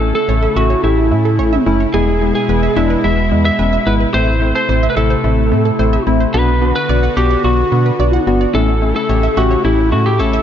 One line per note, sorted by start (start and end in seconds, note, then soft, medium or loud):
0.00 0.12 A1 loud
0.00 1.92 C#3 medium
0.00 1.92 A3 medium
0.00 0.11 A3 medium
0.00 0.18 A3 medium
0.00 0.18 C#4 medium
0.00 6.30 E4 medium
0.00 0.18 E4 medium
0.00 0.14 A4 loud
0.15 0.25 A4 medium
0.15 0.58 A4 loud
0.29 0.48 A1 loud
0.29 0.45 A3 medium
0.29 0.45 C#4 medium
0.29 0.45 E4 medium
0.29 0.38 C#5 medium
0.43 0.52 E5 medium
0.56 0.75 A1 medium
0.56 0.73 A3 medium
0.56 0.73 C#4 medium
0.56 0.83 F#4 medium
0.56 0.73 F#4 loud
0.56 0.66 E5 medium
0.70 0.80 C#5 medium
0.84 1.13 A1 loud
0.84 1.00 A3 medium
0.84 0.94 A3 medium
0.84 1.00 C#4 medium
0.84 1.62 E4 medium
0.84 1.00 G4 medium
1.11 1.40 A2 loud
1.11 1.28 A3 medium
1.11 1.21 A3 medium
1.11 1.28 C#4 medium
1.11 1.28 E4 medium
1.25 1.35 A4 medium
1.39 1.58 A1 loud
1.39 1.55 A3 medium
1.39 1.55 C#4 medium
1.39 1.55 E4 medium
1.39 1.49 C#5 medium
1.53 1.62 E5 medium
1.66 1.86 F#1 loud
1.66 1.83 A3 loud
1.66 1.83 C#4 loud
1.66 1.83 E4 loud
1.66 1.76 E4 medium
1.80 1.90 C#5 medium
1.94 2.32 E1 loud
1.94 4.12 B2 medium
1.94 2.10 G#3 medium
1.94 2.04 G#3 loud
1.94 4.12 G#3 medium
1.94 2.10 B3 medium
1.94 2.10 E4 loud
1.94 2.34 G#4 loud
2.08 2.17 G#3 medium
2.21 2.38 G#3 medium
2.21 2.31 G#3 medium
2.21 2.38 B3 medium
2.21 2.38 E4 medium
2.35 2.78 G#4 medium
2.35 2.45 G#4 medium
2.49 2.68 E1 loud
2.49 2.65 G#3 medium
2.49 2.65 B3 medium
2.49 2.65 E4 medium
2.49 2.59 B4 medium
2.63 2.72 E5 medium
2.76 2.96 E1 loud
2.76 2.93 G#3 loud
2.76 2.93 B3 medium
2.76 2.93 D4 loud
2.76 3.05 E4 medium
2.76 2.86 E5 medium
2.90 3.00 B4 medium
3.04 3.33 E1 loud
3.04 3.20 G#3 medium
3.04 3.14 G#3 medium
3.04 3.20 B3 medium
3.04 3.20 E4 medium
3.04 3.42 E5 loud
3.31 3.51 E2 loud
3.31 3.48 G#3 medium
3.31 3.41 G#3 medium
3.31 3.48 B3 medium
3.31 3.48 E4 medium
3.45 3.55 G#4 medium
3.45 3.88 E5 loud
3.59 3.78 E1 loud
3.59 3.75 G#3 medium
3.59 3.75 B3 medium
3.59 3.75 C#4 medium
3.59 3.69 B4 medium
3.73 3.82 E5 medium
3.86 4.06 G#1 loud
3.86 4.03 G#3 medium
3.86 4.03 B3 medium
3.86 4.03 E4 loud
3.86 3.96 E4 medium
3.86 3.94 B4 loud
4.00 4.10 B4 medium
4.14 4.53 A1 loud
4.14 6.32 C3 medium
4.14 4.30 A3 loud
4.14 6.32 A3 medium
4.14 4.24 A3 loud
4.14 4.30 C4 medium
4.14 4.30 E4 loud
4.14 4.54 C5 loud
4.28 4.37 A3 medium
4.42 4.58 A3 medium
4.42 4.51 A3 medium
4.42 4.58 C4 medium
4.42 4.58 E4 medium
4.55 4.65 A4 medium
4.55 4.89 C5 medium
4.69 4.88 A1 loud
4.69 4.85 A3 medium
4.69 4.85 C4 medium
4.69 4.85 E4 medium
4.69 4.79 C5 medium
4.83 4.93 E5 medium
4.90 4.97 B4 medium
4.96 5.16 A1 loud
4.96 5.13 A3 medium
4.96 5.13 C4 medium
4.96 5.13 E4 loud
4.96 6.03 A4 medium
4.96 5.06 E5 medium
5.10 5.20 C5 medium
5.24 5.53 A1 loud
5.24 5.40 A3 medium
5.24 5.34 A3 medium
5.24 5.40 C4 medium
5.24 5.40 E4 medium
5.51 5.71 A2 loud
5.51 5.68 A3 medium
5.51 5.61 A3 medium
5.51 5.68 C4 medium
5.51 5.68 E4 medium
5.65 5.75 A4 medium
5.79 5.99 A1 loud
5.79 5.95 A3 medium
5.79 5.95 C4 medium
5.79 5.95 E4 loud
5.79 5.89 C5 medium
5.93 6.03 E5 medium
6.07 6.26 A1 medium
6.07 6.23 A3 loud
6.07 6.23 C4 loud
6.07 6.16 E4 medium
6.07 6.23 E4 loud
6.20 6.30 C5 medium
6.34 6.73 B1 loud
6.34 8.52 D3 medium
6.34 6.44 B3 medium
6.34 6.50 B3 medium
6.34 8.52 B3 medium
6.34 6.50 D4 medium
6.34 6.50 F#4 loud
6.34 8.52 F#4 medium
6.34 6.74 B4 loud
6.48 6.58 B3 medium
6.62 6.71 B3 medium
6.62 6.78 B3 medium
6.62 6.78 D4 medium
6.62 6.78 F#4 medium
6.76 7.14 B4 loud
6.76 6.85 B4 medium
6.89 7.09 B1 loud
6.89 7.06 B3 medium
6.89 7.06 D4 medium
6.89 7.06 F#4 medium
6.89 6.99 D5 medium
7.03 7.13 F#5 medium
7.17 7.36 B1 loud
7.17 7.33 B3 medium
7.17 7.33 D4 medium
7.17 7.33 F#4 loud
7.17 7.44 G4 medium
7.17 7.27 F#5 medium
7.31 7.40 D5 medium
7.44 7.64 B1 loud
7.44 7.54 B3 medium
7.44 7.61 B3 medium
7.44 7.61 D4 medium
7.44 8.23 F#4 medium
7.44 7.61 F#4 medium
7.72 7.91 B2 loud
7.72 7.82 B3 medium
7.72 7.88 B3 medium
7.72 7.88 D4 medium
7.72 7.88 F#4 medium
7.86 7.95 B4 medium
8.00 8.19 B1 loud
8.00 8.16 B3 medium
8.00 8.16 D4 medium
8.00 8.16 F#4 medium
8.00 8.09 D5 medium
8.13 8.23 F#5 medium
8.27 8.46 G1 loud
8.27 8.43 B3 loud
8.27 8.43 D4 loud
8.27 8.43 F#4 loud
8.27 8.37 F#4 medium
8.41 8.50 D5 medium
8.54 8.93 A1 loud
8.54 10.43 C#3 medium
8.54 10.43 A3 medium
8.54 8.64 A3 medium
8.54 8.71 A3 loud
8.54 8.71 C#4 medium
8.54 10.43 E4 loud
8.54 8.71 E4 loud
8.54 8.95 A4 loud
8.68 8.78 A3 medium
8.82 8.92 A3 medium
8.82 8.98 A3 medium
8.82 8.98 C#4 medium
8.82 8.98 E4 medium
8.96 9.05 A4 medium
8.96 9.38 A4 loud
9.09 9.29 A1 loud
9.09 9.26 A3 medium
9.09 9.26 C#4 medium
9.09 9.26 G4 medium
9.09 9.19 C#5 medium
9.23 9.33 E5 medium
9.37 9.56 A1 loud
9.37 9.53 A3 medium
9.37 9.53 C#4 medium
9.37 9.64 F#4 medium
9.37 9.53 G4 loud
9.37 9.47 E5 medium
9.51 9.60 C#5 medium
9.65 9.94 A1 loud
9.65 9.74 A3 medium
9.65 9.81 A3 medium
9.65 9.81 C#4 medium
9.65 9.92 E4 medium
9.65 9.81 G4 medium
9.92 10.21 A2 loud
9.92 10.02 A3 medium
9.92 10.08 A3 medium
9.92 10.08 C#4 medium
9.92 10.06 F#4 medium
9.92 10.08 F#4 medium
10.06 10.20 G4 medium
10.06 10.15 A4 medium
10.19 10.39 A1 loud
10.19 10.36 A3 medium
10.19 10.36 C#4 medium
10.19 10.36 E4 medium
10.19 10.43 A4 medium
10.19 10.29 C#5 loud
10.33 10.43 E5 medium